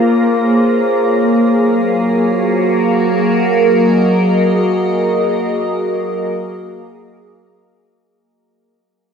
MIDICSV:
0, 0, Header, 1, 3, 480
1, 0, Start_track
1, 0, Tempo, 500000
1, 8769, End_track
2, 0, Start_track
2, 0, Title_t, "Ambient pad"
2, 0, Program_c, 0, 92
2, 0, Note_on_c, 0, 58, 68
2, 0, Note_on_c, 0, 65, 80
2, 0, Note_on_c, 0, 68, 68
2, 0, Note_on_c, 0, 72, 72
2, 0, Note_on_c, 0, 73, 96
2, 1298, Note_off_c, 0, 65, 0
2, 1298, Note_on_c, 0, 54, 70
2, 1461, Note_on_c, 0, 66, 71
2, 1814, Note_on_c, 0, 70, 92
2, 2453, Note_off_c, 0, 73, 0
2, 2495, Note_off_c, 0, 72, 0
2, 2943, Note_on_c, 0, 75, 77
2, 3021, Note_off_c, 0, 58, 0
2, 7815, Note_off_c, 0, 70, 0
2, 7816, Note_off_c, 0, 68, 0
2, 7818, Note_off_c, 0, 66, 0
2, 7821, Note_off_c, 0, 54, 0
2, 7822, Note_off_c, 0, 75, 0
2, 8769, End_track
3, 0, Start_track
3, 0, Title_t, "Synth drone"
3, 0, Program_c, 1, 95
3, 0, Note_on_c, 1, 58, 62
3, 7928, Note_off_c, 1, 58, 0
3, 8769, End_track
0, 0, End_of_file